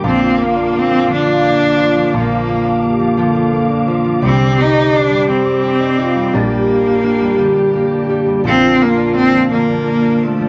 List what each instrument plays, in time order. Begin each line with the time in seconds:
Already playing: steel-string acoustic guitar D3 G3 A#3 D4, tonewheel organ A#3 D6
0.02 fingered electric bass A#1, steel-string acoustic guitar A#2 F3 D4, cello C4, french horn section F4, tonewheel organ F5
0.22 steel-string acoustic guitar F3
0.38 steel-string acoustic guitar A#3, cello A#3
0.56 steel-string acoustic guitar D4
0.73 steel-string acoustic guitar A#3 D4
0.79 cello C4
0.91 steel-string acoustic guitar F3
1.08 steel-string acoustic guitar D3 F3
1.13 cello D4
1.25 steel-string acoustic guitar F3
1.43 steel-string acoustic guitar A#3
1.61 steel-string acoustic guitar D4
1.78 steel-string acoustic guitar F3 A#3
1.96 steel-string acoustic guitar F3
2.13 fingered electric bass A#1, steel-string acoustic guitar A#2 F3 D4
2.17 cello A#3
2.31 steel-string acoustic guitar F3
2.48 steel-string acoustic guitar A#3
2.66 steel-string acoustic guitar D4
2.82 steel-string acoustic guitar A#3 D4, french horn section G4
2.99 steel-string acoustic guitar F3
3.17 steel-string acoustic guitar D3 F3, french horn section A4
3.35 steel-string acoustic guitar F3
3.53 steel-string acoustic guitar A#3
3.70 steel-string acoustic guitar D4
3.87 steel-string acoustic guitar F3 A#3
4.04 steel-string acoustic guitar F3
4.21 fingered electric bass C2, steel-string acoustic guitar C3 G3 D5, french horn section G4, tonewheel organ C5 D5
4.26 cello C4
4.39 steel-string acoustic guitar G3
4.58 cello D#4, steel-string acoustic guitar G4
4.92 steel-string acoustic guitar D4 D5
4.96 cello D4
5.10 steel-string acoustic guitar G3
5.27 steel-string acoustic guitar G3 C4, cello C4
5.44 steel-string acoustic guitar G3
5.62 steel-string acoustic guitar D4 G4
5.80 steel-string acoustic guitar D#4
5.97 steel-string acoustic guitar D4 D#4, french horn section F4
6.15 steel-string acoustic guitar G3
6.33 fingered electric bass A#1, steel-string acoustic guitar A#2 G3 D4, cello A#3, tonewheel organ G4 D5, french horn section G4
6.50 steel-string acoustic guitar G3
6.68 steel-string acoustic guitar A#3
6.86 steel-string acoustic guitar D4
7.03 steel-string acoustic guitar A#3 D4
7.21 steel-string acoustic guitar G3
7.38 steel-string acoustic guitar D3 G3
7.56 steel-string acoustic guitar G3
7.73 steel-string acoustic guitar A#3
7.91 steel-string acoustic guitar D4
8.09 steel-string acoustic guitar G3 A#3
8.26 steel-string acoustic guitar G3
8.44 fingered electric bass A#1, steel-string acoustic guitar A#2 F3 D4, cello C4, french horn section F4, tonewheel organ F4
8.61 steel-string acoustic guitar F3
8.79 steel-string acoustic guitar A#3, cello A#3
8.96 steel-string acoustic guitar D4
9.14 steel-string acoustic guitar A#3 D4, cello C4
9.32 steel-string acoustic guitar F3
9.49 steel-string acoustic guitar D3 F3, cello A#3
9.68 steel-string acoustic guitar F3
9.85 steel-string acoustic guitar A#3
10.02 steel-string acoustic guitar D4
10.19 steel-string acoustic guitar F3, french horn section C4
10.23 cello A3
10.38 steel-string acoustic guitar F3